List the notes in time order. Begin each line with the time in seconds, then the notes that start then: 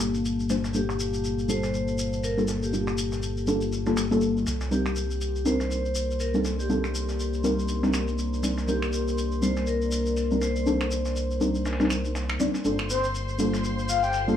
Already playing: G1 A#3 G4 F5 A5
0.00 finger snap, snare, shekere
0.14 closed hi-hat, shekere
0.25 tambourine, shekere
0.40 shekere
0.49 G3 A#3 D4 F4 C5, snare, tambourine, shekere
0.64 snare, shekere
0.74 G3 A#3 D4 F4 G4 A4, tambourine, shekere
0.89 finger snap, shekere
0.99 tambourine, shekere
1.14 shekere
1.24 tambourine, shekere
1.39 shekere
1.48 G3 A#3 D4 F4 A4 C5, tambourine, shekere
1.63 snare, shekere
1.74 tambourine, shekere
1.88 shekere
1.98 tambourine, shekere
2.13 shekere
2.23 A#4, open hi-hat, shekere
2.37 G3 A#3 D4 F4 A4, shekere
2.48 snare, tambourine, shekere
2.63 G4, shekere
2.73 G3 A#3 D4 F4 G4, tambourine, shekere
2.87 finger snap, shekere
2.98 tambourine, shekere
3.12 snare, shekere
3.23 tambourine, shekere
3.37 shekere
3.47 G3 A#3 D4 F4 A4, tambourine, shekere
3.61 shekere
3.72 tambourine, shekere
3.86 G3 A#3 D4 F4 A4, snare, shekere
3.97 finger snap, snare, shekere
4.11 G3 A#3 D4 F4 A4, closed hi-hat, shekere
4.21 tambourine, shekere
4.37 shekere
4.46 C2 A#4 D5 C6, snare, tambourine, shekere
4.61 snare, shekere
4.71 G3 C4 D4 D#4 G4 A#4, tambourine, shekere
4.86 finger snap, shekere
4.96 tambourine, shekere
5.11 shekere
5.21 tambourine, shekere
5.35 shekere
5.45 G3 C4 D4 D#4 A#4 C5, tambourine, shekere
5.60 snare, shekere
5.70 tambourine, shekere
5.85 shekere
5.95 tambourine, shekere
6.11 shekere
6.20 A#4, open hi-hat, shekere
6.34 G3 C4 D4 D#4 A4 A#4, shekere
6.45 snare, tambourine, shekere
6.59 G4, shekere
6.69 G3 C4 D4 D#4 A4, tambourine, shekere
6.84 finger snap, shekere
6.94 tambourine, shekere
7.09 snare, shekere
7.19 tambourine, shekere
7.34 shekere
7.44 G3 C4 D4 D#4 A#4, tambourine, shekere
7.59 shekere
7.68 tambourine, shekere
7.83 G3 C4 D4 D#4 A#4, snare, shekere
7.94 finger snap, snare, shekere
8.08 closed hi-hat, shekere
8.18 tambourine, shekere
8.33 shekere
8.43 G3 C4 D4 D#4 D5, snare, tambourine, shekere
8.58 snare, shekere
8.68 G3 C4 D4 D#4 G4 A#4, tambourine, shekere
8.82 finger snap, shekere
8.93 tambourine, shekere
9.08 shekere
9.18 tambourine, shekere
9.32 shekere
9.42 G3 C4 D4 D#4 A#4 C5, tambourine, shekere
9.56 snare, shekere
9.66 A#4, tambourine, shekere
9.82 shekere
9.92 tambourine, shekere
10.06 shekere
10.17 open hi-hat, shekere
10.31 G3 C4 D4 D#4 A#4, shekere
10.42 C5, snare, tambourine, shekere
10.56 shekere
10.66 G3 C4 D4 D#4 A4, tambourine, shekere
10.81 finger snap, shekere
10.91 tambourine, shekere
11.05 snare, shekere
11.16 tambourine, shekere
11.31 shekere
11.40 G3 C4 D4 D#4 A#4, tambourine, shekere
11.55 shekere
11.65 snare, tambourine, shekere
11.73 snare, tambourine
11.80 G3 C4 D4 D#4 A#4, snare, tambourine, shekere
11.85 snare, tambourine
11.90 finger snap, shekere
12.05 closed hi-hat, shekere
12.15 snare, tambourine, shekere
12.29 finger snap, shekere
12.40 G3 C4 D4 D#4 D5, snare, tambourine, shekere
12.54 snare, shekere
12.64 G1 G3 A#3 D4 F4 A4 C5 F5 G5 C6, tambourine, shekere
12.79 finger snap, shekere
12.89 C5, tambourine, shekere
13.04 shekere
13.14 tambourine, shekere
13.29 shekere
13.38 G3 A#3 D4 F4 A4, tambourine, shekere
13.53 snare, shekere
13.64 tambourine, shekere
13.79 shekere
13.89 F5, tambourine, shekere
14.03 G5, shekere
14.13 open hi-hat, shekere
14.28 G3 A#3 D4 F4 A4, shekere